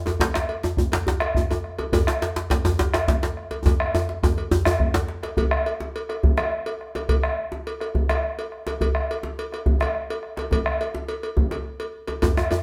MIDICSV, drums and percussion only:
0, 0, Header, 1, 4, 480
1, 0, Start_track
1, 0, Tempo, 286123
1, 352, Time_signature, 12, 3, 24, 8
1, 21186, End_track
2, 0, Start_track
2, 0, Title_t, "Bombo"
2, 328, Note_on_c, 9, 43, 97
2, 496, Note_off_c, 9, 43, 0
2, 574, Note_on_c, 9, 37, 66
2, 742, Note_off_c, 9, 37, 0
2, 1295, Note_on_c, 9, 43, 92
2, 1463, Note_off_c, 9, 43, 0
2, 2019, Note_on_c, 9, 37, 75
2, 2187, Note_off_c, 9, 37, 0
2, 2258, Note_on_c, 9, 43, 88
2, 2425, Note_off_c, 9, 43, 0
2, 2753, Note_on_c, 9, 37, 31
2, 2921, Note_off_c, 9, 37, 0
2, 3230, Note_on_c, 9, 43, 95
2, 3397, Note_off_c, 9, 43, 0
2, 3476, Note_on_c, 9, 37, 68
2, 3644, Note_off_c, 9, 37, 0
2, 4198, Note_on_c, 9, 43, 100
2, 4366, Note_off_c, 9, 43, 0
2, 4924, Note_on_c, 9, 37, 77
2, 5092, Note_off_c, 9, 37, 0
2, 5164, Note_on_c, 9, 43, 98
2, 5332, Note_off_c, 9, 43, 0
2, 5656, Note_on_c, 9, 37, 30
2, 5824, Note_off_c, 9, 37, 0
2, 6131, Note_on_c, 9, 43, 95
2, 6299, Note_off_c, 9, 43, 0
2, 6377, Note_on_c, 9, 37, 74
2, 6544, Note_off_c, 9, 37, 0
2, 6627, Note_on_c, 9, 37, 30
2, 6795, Note_off_c, 9, 37, 0
2, 7095, Note_on_c, 9, 43, 94
2, 7262, Note_off_c, 9, 43, 0
2, 7808, Note_on_c, 9, 37, 86
2, 7976, Note_off_c, 9, 37, 0
2, 8046, Note_on_c, 9, 37, 32
2, 8046, Note_on_c, 9, 43, 103
2, 8214, Note_off_c, 9, 37, 0
2, 8214, Note_off_c, 9, 43, 0
2, 8769, Note_on_c, 9, 37, 29
2, 8937, Note_off_c, 9, 37, 0
2, 9007, Note_on_c, 9, 43, 102
2, 9175, Note_off_c, 9, 43, 0
2, 9249, Note_on_c, 9, 37, 83
2, 9417, Note_off_c, 9, 37, 0
2, 10221, Note_on_c, 9, 37, 31
2, 10388, Note_off_c, 9, 37, 0
2, 10461, Note_on_c, 9, 43, 102
2, 10628, Note_off_c, 9, 43, 0
2, 10698, Note_on_c, 9, 37, 83
2, 10865, Note_off_c, 9, 37, 0
2, 10938, Note_on_c, 9, 37, 32
2, 11106, Note_off_c, 9, 37, 0
2, 11424, Note_on_c, 9, 37, 31
2, 11592, Note_off_c, 9, 37, 0
2, 11664, Note_on_c, 9, 37, 29
2, 11831, Note_off_c, 9, 37, 0
2, 11891, Note_on_c, 9, 43, 92
2, 12059, Note_off_c, 9, 43, 0
2, 12137, Note_on_c, 9, 37, 73
2, 12305, Note_off_c, 9, 37, 0
2, 13093, Note_on_c, 9, 37, 30
2, 13261, Note_off_c, 9, 37, 0
2, 13331, Note_on_c, 9, 43, 90
2, 13499, Note_off_c, 9, 43, 0
2, 13579, Note_on_c, 9, 37, 76
2, 13747, Note_off_c, 9, 37, 0
2, 13819, Note_on_c, 9, 37, 27
2, 13987, Note_off_c, 9, 37, 0
2, 14293, Note_on_c, 9, 37, 31
2, 14461, Note_off_c, 9, 37, 0
2, 14537, Note_on_c, 9, 37, 27
2, 14705, Note_off_c, 9, 37, 0
2, 14771, Note_on_c, 9, 43, 79
2, 14939, Note_off_c, 9, 43, 0
2, 15012, Note_on_c, 9, 37, 67
2, 15179, Note_off_c, 9, 37, 0
2, 15978, Note_on_c, 9, 37, 30
2, 16146, Note_off_c, 9, 37, 0
2, 16205, Note_on_c, 9, 43, 100
2, 16373, Note_off_c, 9, 43, 0
2, 16455, Note_on_c, 9, 37, 75
2, 16623, Note_off_c, 9, 37, 0
2, 16687, Note_on_c, 9, 37, 32
2, 16855, Note_off_c, 9, 37, 0
2, 17159, Note_on_c, 9, 37, 31
2, 17327, Note_off_c, 9, 37, 0
2, 17391, Note_on_c, 9, 37, 30
2, 17559, Note_off_c, 9, 37, 0
2, 17642, Note_on_c, 9, 43, 99
2, 17809, Note_off_c, 9, 43, 0
2, 17882, Note_on_c, 9, 37, 72
2, 18049, Note_off_c, 9, 37, 0
2, 19076, Note_on_c, 9, 43, 96
2, 19244, Note_off_c, 9, 43, 0
2, 20507, Note_on_c, 9, 43, 101
2, 20674, Note_off_c, 9, 43, 0
2, 20761, Note_on_c, 9, 37, 73
2, 20929, Note_off_c, 9, 37, 0
2, 21186, End_track
3, 0, Start_track
3, 0, Title_t, "Djembe"
3, 97, Note_on_c, 9, 62, 52
3, 97, Note_on_c, 9, 63, 57
3, 113, Note_off_c, 9, 63, 0
3, 113, Note_on_c, 9, 63, 80
3, 265, Note_off_c, 9, 62, 0
3, 280, Note_off_c, 9, 63, 0
3, 339, Note_on_c, 9, 64, 65
3, 353, Note_on_c, 9, 62, 111
3, 507, Note_off_c, 9, 64, 0
3, 521, Note_off_c, 9, 62, 0
3, 594, Note_on_c, 9, 62, 87
3, 762, Note_off_c, 9, 62, 0
3, 833, Note_on_c, 9, 62, 21
3, 1001, Note_off_c, 9, 62, 0
3, 1064, Note_on_c, 9, 62, 60
3, 1074, Note_on_c, 9, 63, 83
3, 1232, Note_off_c, 9, 62, 0
3, 1241, Note_off_c, 9, 63, 0
3, 1315, Note_on_c, 9, 63, 79
3, 1483, Note_off_c, 9, 63, 0
3, 1553, Note_on_c, 9, 62, 23
3, 1553, Note_on_c, 9, 63, 55
3, 1564, Note_off_c, 9, 62, 0
3, 1564, Note_on_c, 9, 62, 105
3, 1721, Note_off_c, 9, 63, 0
3, 1732, Note_off_c, 9, 62, 0
3, 1789, Note_on_c, 9, 64, 78
3, 1811, Note_on_c, 9, 62, 82
3, 1957, Note_off_c, 9, 64, 0
3, 1979, Note_off_c, 9, 62, 0
3, 2027, Note_on_c, 9, 62, 60
3, 2195, Note_off_c, 9, 62, 0
3, 2280, Note_on_c, 9, 62, 23
3, 2293, Note_on_c, 9, 63, 77
3, 2447, Note_off_c, 9, 62, 0
3, 2461, Note_off_c, 9, 63, 0
3, 2537, Note_on_c, 9, 63, 78
3, 2705, Note_off_c, 9, 63, 0
3, 3002, Note_on_c, 9, 62, 54
3, 3002, Note_on_c, 9, 63, 62
3, 3170, Note_off_c, 9, 62, 0
3, 3170, Note_off_c, 9, 63, 0
3, 3236, Note_on_c, 9, 64, 75
3, 3245, Note_on_c, 9, 63, 113
3, 3404, Note_off_c, 9, 64, 0
3, 3413, Note_off_c, 9, 63, 0
3, 3489, Note_on_c, 9, 62, 87
3, 3657, Note_off_c, 9, 62, 0
3, 3724, Note_on_c, 9, 62, 24
3, 3728, Note_off_c, 9, 62, 0
3, 3728, Note_on_c, 9, 62, 78
3, 3896, Note_off_c, 9, 62, 0
3, 3962, Note_on_c, 9, 62, 61
3, 3965, Note_off_c, 9, 62, 0
3, 3965, Note_on_c, 9, 62, 74
3, 4133, Note_off_c, 9, 62, 0
3, 4211, Note_on_c, 9, 62, 84
3, 4379, Note_off_c, 9, 62, 0
3, 4443, Note_on_c, 9, 63, 113
3, 4447, Note_off_c, 9, 63, 0
3, 4447, Note_on_c, 9, 62, 21
3, 4447, Note_on_c, 9, 63, 58
3, 4614, Note_off_c, 9, 62, 0
3, 4614, Note_off_c, 9, 63, 0
3, 4684, Note_on_c, 9, 62, 83
3, 4692, Note_on_c, 9, 64, 75
3, 4851, Note_off_c, 9, 62, 0
3, 4860, Note_off_c, 9, 64, 0
3, 4929, Note_on_c, 9, 62, 53
3, 4933, Note_off_c, 9, 62, 0
3, 4933, Note_on_c, 9, 62, 80
3, 5101, Note_off_c, 9, 62, 0
3, 5166, Note_on_c, 9, 62, 20
3, 5173, Note_off_c, 9, 62, 0
3, 5173, Note_on_c, 9, 62, 74
3, 5341, Note_off_c, 9, 62, 0
3, 5419, Note_on_c, 9, 62, 76
3, 5587, Note_off_c, 9, 62, 0
3, 5886, Note_on_c, 9, 62, 48
3, 5886, Note_on_c, 9, 63, 47
3, 6054, Note_off_c, 9, 62, 0
3, 6054, Note_off_c, 9, 63, 0
3, 6132, Note_on_c, 9, 62, 18
3, 6132, Note_on_c, 9, 64, 64
3, 6137, Note_on_c, 9, 63, 98
3, 6300, Note_off_c, 9, 62, 0
3, 6300, Note_off_c, 9, 64, 0
3, 6304, Note_off_c, 9, 63, 0
3, 6619, Note_on_c, 9, 63, 97
3, 6787, Note_off_c, 9, 63, 0
3, 6862, Note_on_c, 9, 62, 55
3, 7029, Note_off_c, 9, 62, 0
3, 7105, Note_on_c, 9, 63, 94
3, 7272, Note_off_c, 9, 63, 0
3, 7333, Note_on_c, 9, 63, 57
3, 7501, Note_off_c, 9, 63, 0
3, 7574, Note_on_c, 9, 63, 112
3, 7574, Note_on_c, 9, 64, 64
3, 7741, Note_off_c, 9, 63, 0
3, 7741, Note_off_c, 9, 64, 0
3, 7812, Note_on_c, 9, 62, 55
3, 7823, Note_on_c, 9, 63, 104
3, 7980, Note_off_c, 9, 62, 0
3, 7991, Note_off_c, 9, 63, 0
3, 8290, Note_on_c, 9, 62, 99
3, 8298, Note_on_c, 9, 64, 45
3, 8458, Note_off_c, 9, 62, 0
3, 8466, Note_off_c, 9, 64, 0
3, 8528, Note_on_c, 9, 62, 50
3, 8696, Note_off_c, 9, 62, 0
3, 8782, Note_on_c, 9, 62, 58
3, 8950, Note_off_c, 9, 62, 0
3, 9015, Note_on_c, 9, 64, 82
3, 9183, Note_off_c, 9, 64, 0
3, 9738, Note_on_c, 9, 62, 60
3, 9738, Note_on_c, 9, 63, 59
3, 9906, Note_off_c, 9, 62, 0
3, 9906, Note_off_c, 9, 63, 0
3, 10223, Note_on_c, 9, 62, 24
3, 10390, Note_off_c, 9, 62, 0
3, 10458, Note_on_c, 9, 64, 72
3, 10626, Note_off_c, 9, 64, 0
3, 10692, Note_on_c, 9, 62, 51
3, 10692, Note_on_c, 9, 63, 54
3, 10860, Note_off_c, 9, 62, 0
3, 10860, Note_off_c, 9, 63, 0
3, 11661, Note_on_c, 9, 62, 48
3, 11661, Note_on_c, 9, 63, 50
3, 11829, Note_off_c, 9, 62, 0
3, 11829, Note_off_c, 9, 63, 0
3, 11895, Note_on_c, 9, 64, 62
3, 12063, Note_off_c, 9, 64, 0
3, 12612, Note_on_c, 9, 62, 52
3, 12612, Note_on_c, 9, 63, 55
3, 12780, Note_off_c, 9, 62, 0
3, 12780, Note_off_c, 9, 63, 0
3, 13094, Note_on_c, 9, 62, 21
3, 13262, Note_off_c, 9, 62, 0
3, 13338, Note_on_c, 9, 64, 70
3, 13505, Note_off_c, 9, 64, 0
3, 13582, Note_on_c, 9, 62, 58
3, 13582, Note_on_c, 9, 63, 55
3, 13750, Note_off_c, 9, 62, 0
3, 13750, Note_off_c, 9, 63, 0
3, 14538, Note_on_c, 9, 62, 57
3, 14538, Note_on_c, 9, 63, 55
3, 14706, Note_off_c, 9, 62, 0
3, 14706, Note_off_c, 9, 63, 0
3, 14780, Note_on_c, 9, 64, 76
3, 14947, Note_off_c, 9, 64, 0
3, 15490, Note_on_c, 9, 62, 58
3, 15490, Note_on_c, 9, 63, 59
3, 15658, Note_off_c, 9, 62, 0
3, 15658, Note_off_c, 9, 63, 0
3, 15971, Note_on_c, 9, 62, 23
3, 16139, Note_off_c, 9, 62, 0
3, 16208, Note_on_c, 9, 64, 70
3, 16376, Note_off_c, 9, 64, 0
3, 16447, Note_on_c, 9, 62, 54
3, 16447, Note_on_c, 9, 63, 59
3, 16615, Note_off_c, 9, 62, 0
3, 16615, Note_off_c, 9, 63, 0
3, 17402, Note_on_c, 9, 62, 56
3, 17402, Note_on_c, 9, 63, 54
3, 17570, Note_off_c, 9, 62, 0
3, 17570, Note_off_c, 9, 63, 0
3, 17631, Note_on_c, 9, 62, 23
3, 17631, Note_on_c, 9, 64, 70
3, 17799, Note_off_c, 9, 62, 0
3, 17799, Note_off_c, 9, 64, 0
3, 18362, Note_on_c, 9, 62, 60
3, 18362, Note_on_c, 9, 63, 62
3, 18530, Note_off_c, 9, 62, 0
3, 18530, Note_off_c, 9, 63, 0
3, 18610, Note_on_c, 9, 62, 25
3, 18778, Note_off_c, 9, 62, 0
3, 19069, Note_on_c, 9, 64, 74
3, 19237, Note_off_c, 9, 64, 0
3, 19312, Note_on_c, 9, 62, 62
3, 19312, Note_on_c, 9, 63, 60
3, 19479, Note_off_c, 9, 62, 0
3, 19479, Note_off_c, 9, 63, 0
3, 20268, Note_on_c, 9, 62, 55
3, 20268, Note_on_c, 9, 63, 56
3, 20436, Note_off_c, 9, 62, 0
3, 20436, Note_off_c, 9, 63, 0
3, 20516, Note_on_c, 9, 63, 107
3, 20516, Note_on_c, 9, 64, 69
3, 20684, Note_off_c, 9, 63, 0
3, 20684, Note_off_c, 9, 64, 0
3, 20757, Note_on_c, 9, 63, 87
3, 20925, Note_off_c, 9, 63, 0
3, 20994, Note_on_c, 9, 63, 81
3, 21162, Note_off_c, 9, 63, 0
3, 21186, End_track
4, 0, Start_track
4, 0, Title_t, "Drums"
4, 113, Note_on_c, 9, 56, 48
4, 281, Note_off_c, 9, 56, 0
4, 343, Note_on_c, 9, 56, 53
4, 511, Note_off_c, 9, 56, 0
4, 822, Note_on_c, 9, 56, 44
4, 989, Note_off_c, 9, 56, 0
4, 1542, Note_on_c, 9, 56, 48
4, 1710, Note_off_c, 9, 56, 0
4, 2042, Note_on_c, 9, 56, 44
4, 2210, Note_off_c, 9, 56, 0
4, 2526, Note_on_c, 9, 56, 53
4, 2694, Note_off_c, 9, 56, 0
4, 2995, Note_on_c, 9, 56, 52
4, 3163, Note_off_c, 9, 56, 0
4, 3240, Note_on_c, 9, 56, 73
4, 3408, Note_off_c, 9, 56, 0
4, 3724, Note_on_c, 9, 56, 50
4, 3892, Note_off_c, 9, 56, 0
4, 4195, Note_on_c, 9, 56, 55
4, 4363, Note_off_c, 9, 56, 0
4, 4446, Note_on_c, 9, 56, 47
4, 4614, Note_off_c, 9, 56, 0
4, 4928, Note_on_c, 9, 56, 44
4, 5096, Note_off_c, 9, 56, 0
4, 5415, Note_on_c, 9, 56, 43
4, 5583, Note_off_c, 9, 56, 0
4, 5888, Note_on_c, 9, 56, 46
4, 6056, Note_off_c, 9, 56, 0
4, 6146, Note_on_c, 9, 56, 52
4, 6314, Note_off_c, 9, 56, 0
4, 6619, Note_on_c, 9, 56, 45
4, 6787, Note_off_c, 9, 56, 0
4, 7104, Note_on_c, 9, 56, 48
4, 7271, Note_off_c, 9, 56, 0
4, 7347, Note_on_c, 9, 56, 45
4, 7515, Note_off_c, 9, 56, 0
4, 7834, Note_on_c, 9, 56, 49
4, 8001, Note_off_c, 9, 56, 0
4, 8301, Note_on_c, 9, 56, 50
4, 8469, Note_off_c, 9, 56, 0
4, 8778, Note_on_c, 9, 56, 50
4, 8946, Note_off_c, 9, 56, 0
4, 9025, Note_on_c, 9, 56, 67
4, 9193, Note_off_c, 9, 56, 0
4, 9500, Note_on_c, 9, 56, 53
4, 9668, Note_off_c, 9, 56, 0
4, 9993, Note_on_c, 9, 56, 59
4, 10161, Note_off_c, 9, 56, 0
4, 10227, Note_on_c, 9, 56, 55
4, 10395, Note_off_c, 9, 56, 0
4, 10700, Note_on_c, 9, 56, 49
4, 10867, Note_off_c, 9, 56, 0
4, 11176, Note_on_c, 9, 56, 59
4, 11344, Note_off_c, 9, 56, 0
4, 11672, Note_on_c, 9, 56, 54
4, 11839, Note_off_c, 9, 56, 0
4, 11897, Note_on_c, 9, 56, 74
4, 12065, Note_off_c, 9, 56, 0
4, 12866, Note_on_c, 9, 56, 55
4, 13033, Note_off_c, 9, 56, 0
4, 13108, Note_on_c, 9, 56, 57
4, 13275, Note_off_c, 9, 56, 0
4, 13595, Note_on_c, 9, 56, 54
4, 13763, Note_off_c, 9, 56, 0
4, 14069, Note_on_c, 9, 56, 54
4, 14237, Note_off_c, 9, 56, 0
4, 14553, Note_on_c, 9, 56, 56
4, 14720, Note_off_c, 9, 56, 0
4, 14791, Note_on_c, 9, 56, 59
4, 14958, Note_off_c, 9, 56, 0
4, 15281, Note_on_c, 9, 56, 52
4, 15449, Note_off_c, 9, 56, 0
4, 15752, Note_on_c, 9, 56, 58
4, 15920, Note_off_c, 9, 56, 0
4, 15999, Note_on_c, 9, 56, 50
4, 16167, Note_off_c, 9, 56, 0
4, 16481, Note_on_c, 9, 56, 49
4, 16649, Note_off_c, 9, 56, 0
4, 16950, Note_on_c, 9, 56, 58
4, 17118, Note_off_c, 9, 56, 0
4, 17428, Note_on_c, 9, 56, 54
4, 17596, Note_off_c, 9, 56, 0
4, 17658, Note_on_c, 9, 56, 67
4, 17826, Note_off_c, 9, 56, 0
4, 18132, Note_on_c, 9, 56, 51
4, 18299, Note_off_c, 9, 56, 0
4, 18596, Note_on_c, 9, 56, 61
4, 18764, Note_off_c, 9, 56, 0
4, 18845, Note_on_c, 9, 56, 53
4, 19013, Note_off_c, 9, 56, 0
4, 19328, Note_on_c, 9, 56, 47
4, 19496, Note_off_c, 9, 56, 0
4, 19792, Note_on_c, 9, 56, 53
4, 19960, Note_off_c, 9, 56, 0
4, 20257, Note_on_c, 9, 56, 54
4, 20425, Note_off_c, 9, 56, 0
4, 20502, Note_on_c, 9, 56, 70
4, 20670, Note_off_c, 9, 56, 0
4, 20981, Note_on_c, 9, 56, 58
4, 21148, Note_off_c, 9, 56, 0
4, 21186, End_track
0, 0, End_of_file